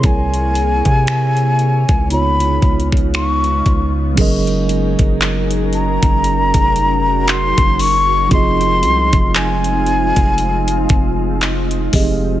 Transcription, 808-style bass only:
X:1
M:4/4
L:1/16
Q:"Swing 16ths" 1/4=58
K:Dblyd
V:1 name="808-style bass" clef=bass
C,,3 C,4 D,,3 D,,4 D,,2 | [K:Gblyd] G,,,3 G,,,4 G,,,2 F,,,4 G,,,3 | F,,,2 C,, F,,,4 F,,,3 F,,,4 F,,,2 |]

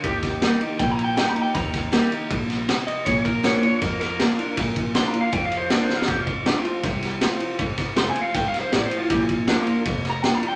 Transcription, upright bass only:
X:1
M:4/4
L:1/8
Q:1/4=159
K:Bb
V:1 name="Upright bass" clef=bass
E,,3 z B,,,3 z | E,,3 z B,,,3 z | B,,,3 z F,,3 z | B,,,3 z F,,3 z |
F,,,3 z C,,3 z | F,,, z F,,, z G,,, z A,,, z | B,,,3 z F,,,3 z |]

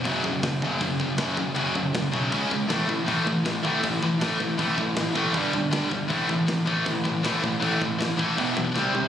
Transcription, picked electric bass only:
X:1
M:4/4
L:1/8
Q:1/4=159
K:A
V:1 name="Picked electric bass" clef=bass
F,,, F,,, F,,, F,,, F,,,2 F,,, F,,, | F,,, F,,, F,,, B,,, C,, C,, A,,, A,,, | A,,, A,,, A,,, A,,, A,,,2 A,,, A,,, | A,,, A,,, A,,, A,,, =G,,, G,,, G,,, G,,, |
A,,, A,,, A,,, A,,, A,,,2 A,,, A,,, | A,,, A,,, A,,, A,,, E,,, B,,, =C,, C,, |]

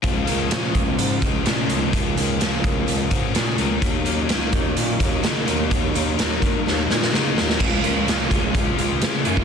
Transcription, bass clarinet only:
X:1
M:4/4
L:1/8
Q:1/4=127
K:Db
V:1 name="Bass clarinet" clef=bass
D,, D,, B,, D,, A,, D,, B,, D,, | D,, D,, D,, D,, D,, A,, B,, D,, | E,, E,, D,, E,, B,, E,, D, E,, | E,, E,, E,, z E,, B,, D, E,, |
D,, D,, D,, D,, D,, D,, D, G,, |]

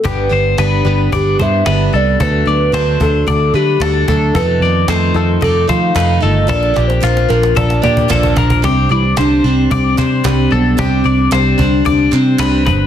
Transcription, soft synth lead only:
X:1
M:4/4
L:1/16
Q:1/4=112
K:Clyd
V:1 name="Soft synth lead"
B6 z2 G2 e4 d2 | B6 A4 G4 A2 | B6 z2 A2 =f2 f2 _e2 | d3 c3 _B2 d2 d4 z2 |
C2 E2 D2 C2 C6 B,2 | C6 D2 D2 C4 z2 |]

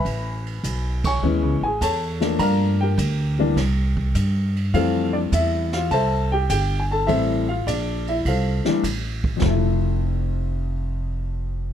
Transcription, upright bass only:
X:1
M:4/4
L:1/8
Q:"Swing" 1/4=102
K:F
V:1 name="Upright bass" clef=bass
A,,,2 =B,,,2 (3_E,, ^C,, A,,, =E,,2 | G,,2 D,,2 C,,2 G,,2 | F,,2 E,,2 C,,2 G,,,2 | A,,,2 B,,,2 C,, z A,,,2 |
F,,,8 |]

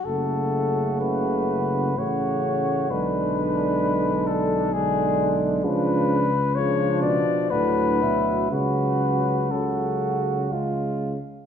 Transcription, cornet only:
X:1
M:3/4
L:1/8
Q:1/4=62
K:F#m
V:1 name="Cornet"
A2 B2 c2 | B3 A G z | B2 c d B2 | B2 A2 z2 |]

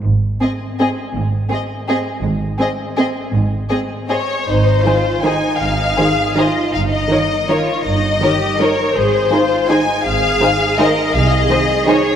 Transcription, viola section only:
X:1
M:3/4
L:1/8
Q:1/4=161
K:Ab
V:1 name="Viola section"
z2 C2 C2 | z2 C2 C2 | z2 C2 C2 | z2 C2 C2 |
z2 [E,E]2 [E,E]2 | z2 [E,E]2 [E,E]2 | z2 [E,E]2 [E,E]2 | z2 [E,E]2 [E,E]2 |
z2 [E,E]2 [E,E]2 | z2 [E,E]2 [E,E]2 | z2 [E,E]2 [E,E]2 |]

